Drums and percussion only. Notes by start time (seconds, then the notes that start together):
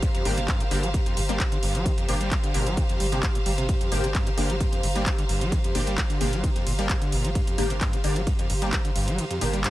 0.02 kick, closed hi-hat, ride
0.15 closed hi-hat, ride
0.25 open hi-hat, ride
0.37 closed hi-hat, ride
0.48 kick, clap, closed hi-hat, ride
0.60 closed hi-hat, ride
0.71 open hi-hat, ride
0.83 closed hi-hat, ride
0.94 kick, closed hi-hat, ride
1.06 closed hi-hat, ride
1.17 open hi-hat, ride
1.29 closed hi-hat, ride
1.40 kick, clap, closed hi-hat, ride
1.52 closed hi-hat, ride
1.63 open hi-hat, ride
1.75 closed hi-hat, ride
1.86 kick, closed hi-hat, ride
1.98 closed hi-hat, ride
2.09 open hi-hat, ride
2.21 closed hi-hat, ride
2.31 kick, clap, closed hi-hat, ride
2.44 closed hi-hat, ride
2.54 open hi-hat, ride
2.66 closed hi-hat, ride
2.77 kick, closed hi-hat, ride
2.89 closed hi-hat, ride
3.00 open hi-hat, ride
3.12 closed hi-hat, ride
3.23 kick, clap, closed hi-hat, ride
3.35 closed hi-hat, ride
3.46 open hi-hat, ride
3.58 closed hi-hat, ride
3.69 kick, closed hi-hat, ride
3.81 closed hi-hat, ride
3.92 open hi-hat, ride
4.04 closed hi-hat, ride
4.15 kick, clap, closed hi-hat, ride
4.27 closed hi-hat, ride
4.38 open hi-hat, ride
4.50 closed hi-hat, ride
4.60 kick, closed hi-hat, ride
4.73 closed hi-hat, ride
4.83 open hi-hat, ride
4.96 closed hi-hat, ride
5.06 kick, clap, closed hi-hat, ride
5.18 closed hi-hat, ride
5.29 open hi-hat, ride
5.41 closed hi-hat, ride
5.52 kick, closed hi-hat, ride
5.64 closed hi-hat, ride
5.75 open hi-hat, ride
5.87 closed hi-hat, ride
5.98 kick, clap, closed hi-hat, ride
6.10 closed hi-hat, ride
6.21 open hi-hat, ride
6.33 closed hi-hat, ride
6.44 kick, closed hi-hat, ride
6.56 closed hi-hat, ride
6.67 open hi-hat, ride
6.79 closed hi-hat, ride
6.89 kick, clap, closed hi-hat, ride
7.02 closed hi-hat, ride
7.12 open hi-hat, ride
7.24 closed hi-hat, ride
7.35 kick, closed hi-hat, ride
7.47 closed hi-hat, ride
7.58 open hi-hat, ride
7.70 closed hi-hat, ride
7.81 kick, clap, closed hi-hat, ride
7.93 closed hi-hat, ride
8.04 open hi-hat, ride
8.16 closed hi-hat, ride
8.27 kick, closed hi-hat, ride
8.39 closed hi-hat, ride
8.50 open hi-hat, ride
8.62 closed hi-hat, ride
8.73 kick, clap, closed hi-hat, ride
8.85 closed hi-hat, ride
8.96 open hi-hat, ride
9.08 closed hi-hat, ride
9.18 closed hi-hat, ride
9.31 closed hi-hat, ride
9.41 open hi-hat, ride
9.53 closed hi-hat, ride
9.64 clap, closed hi-hat, ride